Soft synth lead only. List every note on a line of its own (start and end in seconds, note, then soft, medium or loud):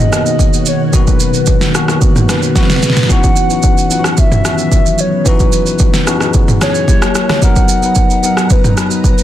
0.00 0.67 D#5 loud
0.68 0.86 C#5 medium
0.88 0.96 C#5 medium
0.95 2.02 B4 medium
2.30 3.13 B4 loud
3.11 3.92 F#5 loud
3.92 4.10 F#5 loud
4.12 4.20 F#5 medium
4.19 5.02 E5 loud
5.00 5.29 C#5 medium
5.27 6.35 B4 medium
6.62 7.45 C#5 loud
7.43 8.24 F#5 loud
8.24 8.53 F#5 loud
8.52 9.23 B4 loud